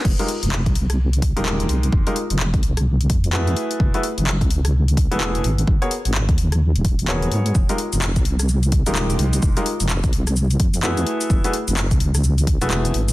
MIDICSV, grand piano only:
0, 0, Header, 1, 2, 480
1, 0, Start_track
1, 0, Tempo, 468750
1, 51, Time_signature, 4, 2, 24, 8
1, 13442, End_track
2, 0, Start_track
2, 0, Title_t, "Grand piano"
2, 0, Program_c, 0, 0
2, 198, Note_on_c, 0, 63, 70
2, 199, Note_on_c, 0, 56, 77
2, 199, Note_on_c, 0, 65, 70
2, 199, Note_on_c, 0, 67, 69
2, 199, Note_on_c, 0, 70, 85
2, 288, Note_off_c, 0, 56, 0
2, 288, Note_off_c, 0, 63, 0
2, 288, Note_off_c, 0, 65, 0
2, 288, Note_off_c, 0, 67, 0
2, 288, Note_off_c, 0, 70, 0
2, 1397, Note_on_c, 0, 63, 73
2, 1397, Note_on_c, 0, 70, 90
2, 1398, Note_on_c, 0, 56, 82
2, 1398, Note_on_c, 0, 65, 74
2, 1398, Note_on_c, 0, 67, 73
2, 2082, Note_off_c, 0, 70, 0
2, 2083, Note_off_c, 0, 56, 0
2, 2083, Note_off_c, 0, 63, 0
2, 2083, Note_off_c, 0, 65, 0
2, 2083, Note_off_c, 0, 67, 0
2, 2118, Note_on_c, 0, 56, 85
2, 2118, Note_on_c, 0, 63, 77
2, 2118, Note_on_c, 0, 65, 76
2, 2118, Note_on_c, 0, 67, 73
2, 2118, Note_on_c, 0, 70, 92
2, 2208, Note_off_c, 0, 56, 0
2, 2208, Note_off_c, 0, 63, 0
2, 2208, Note_off_c, 0, 65, 0
2, 2208, Note_off_c, 0, 67, 0
2, 2208, Note_off_c, 0, 70, 0
2, 3411, Note_on_c, 0, 66, 70
2, 3411, Note_on_c, 0, 68, 74
2, 3412, Note_on_c, 0, 57, 76
2, 3412, Note_on_c, 0, 64, 74
2, 3412, Note_on_c, 0, 71, 88
2, 4003, Note_off_c, 0, 57, 0
2, 4003, Note_off_c, 0, 64, 0
2, 4003, Note_off_c, 0, 66, 0
2, 4003, Note_off_c, 0, 68, 0
2, 4003, Note_off_c, 0, 71, 0
2, 4037, Note_on_c, 0, 57, 78
2, 4037, Note_on_c, 0, 64, 72
2, 4037, Note_on_c, 0, 66, 72
2, 4037, Note_on_c, 0, 68, 70
2, 4037, Note_on_c, 0, 71, 88
2, 4127, Note_off_c, 0, 57, 0
2, 4127, Note_off_c, 0, 66, 0
2, 4127, Note_off_c, 0, 68, 0
2, 4127, Note_off_c, 0, 71, 0
2, 4128, Note_off_c, 0, 64, 0
2, 5236, Note_on_c, 0, 64, 73
2, 5237, Note_on_c, 0, 57, 81
2, 5237, Note_on_c, 0, 66, 74
2, 5237, Note_on_c, 0, 68, 76
2, 5237, Note_on_c, 0, 71, 89
2, 5560, Note_off_c, 0, 57, 0
2, 5560, Note_off_c, 0, 64, 0
2, 5560, Note_off_c, 0, 66, 0
2, 5560, Note_off_c, 0, 68, 0
2, 5560, Note_off_c, 0, 71, 0
2, 5957, Note_on_c, 0, 59, 84
2, 5957, Note_on_c, 0, 68, 75
2, 5957, Note_on_c, 0, 73, 93
2, 5958, Note_on_c, 0, 66, 75
2, 5958, Note_on_c, 0, 70, 77
2, 6047, Note_off_c, 0, 59, 0
2, 6047, Note_off_c, 0, 73, 0
2, 6048, Note_off_c, 0, 66, 0
2, 6048, Note_off_c, 0, 68, 0
2, 6048, Note_off_c, 0, 70, 0
2, 7252, Note_on_c, 0, 59, 78
2, 7252, Note_on_c, 0, 66, 71
2, 7252, Note_on_c, 0, 68, 70
2, 7252, Note_on_c, 0, 70, 72
2, 7252, Note_on_c, 0, 73, 88
2, 7720, Note_off_c, 0, 66, 0
2, 7721, Note_off_c, 0, 59, 0
2, 7721, Note_off_c, 0, 68, 0
2, 7721, Note_off_c, 0, 70, 0
2, 7721, Note_off_c, 0, 73, 0
2, 7878, Note_on_c, 0, 56, 81
2, 7878, Note_on_c, 0, 65, 73
2, 7878, Note_on_c, 0, 67, 72
2, 7878, Note_on_c, 0, 70, 89
2, 7879, Note_on_c, 0, 63, 70
2, 7968, Note_off_c, 0, 56, 0
2, 7968, Note_off_c, 0, 63, 0
2, 7968, Note_off_c, 0, 65, 0
2, 7968, Note_off_c, 0, 67, 0
2, 7968, Note_off_c, 0, 70, 0
2, 9077, Note_on_c, 0, 56, 82
2, 9077, Note_on_c, 0, 70, 89
2, 9078, Note_on_c, 0, 63, 75
2, 9078, Note_on_c, 0, 65, 75
2, 9078, Note_on_c, 0, 67, 77
2, 9762, Note_off_c, 0, 70, 0
2, 9763, Note_off_c, 0, 56, 0
2, 9763, Note_off_c, 0, 63, 0
2, 9763, Note_off_c, 0, 65, 0
2, 9763, Note_off_c, 0, 67, 0
2, 9797, Note_on_c, 0, 56, 85
2, 9797, Note_on_c, 0, 63, 79
2, 9797, Note_on_c, 0, 65, 76
2, 9797, Note_on_c, 0, 67, 76
2, 9797, Note_on_c, 0, 70, 92
2, 9887, Note_off_c, 0, 56, 0
2, 9887, Note_off_c, 0, 63, 0
2, 9887, Note_off_c, 0, 65, 0
2, 9887, Note_off_c, 0, 67, 0
2, 9887, Note_off_c, 0, 70, 0
2, 11091, Note_on_c, 0, 57, 81
2, 11091, Note_on_c, 0, 64, 74
2, 11091, Note_on_c, 0, 66, 72
2, 11091, Note_on_c, 0, 68, 73
2, 11091, Note_on_c, 0, 71, 88
2, 11683, Note_off_c, 0, 57, 0
2, 11683, Note_off_c, 0, 64, 0
2, 11683, Note_off_c, 0, 66, 0
2, 11683, Note_off_c, 0, 68, 0
2, 11683, Note_off_c, 0, 71, 0
2, 11718, Note_on_c, 0, 57, 79
2, 11718, Note_on_c, 0, 64, 75
2, 11718, Note_on_c, 0, 66, 71
2, 11718, Note_on_c, 0, 68, 73
2, 11718, Note_on_c, 0, 71, 88
2, 11808, Note_off_c, 0, 57, 0
2, 11808, Note_off_c, 0, 64, 0
2, 11808, Note_off_c, 0, 66, 0
2, 11808, Note_off_c, 0, 68, 0
2, 11808, Note_off_c, 0, 71, 0
2, 12918, Note_on_c, 0, 57, 83
2, 12918, Note_on_c, 0, 64, 77
2, 12918, Note_on_c, 0, 66, 76
2, 12918, Note_on_c, 0, 68, 77
2, 12918, Note_on_c, 0, 71, 89
2, 13240, Note_off_c, 0, 57, 0
2, 13240, Note_off_c, 0, 64, 0
2, 13240, Note_off_c, 0, 66, 0
2, 13240, Note_off_c, 0, 68, 0
2, 13240, Note_off_c, 0, 71, 0
2, 13442, End_track
0, 0, End_of_file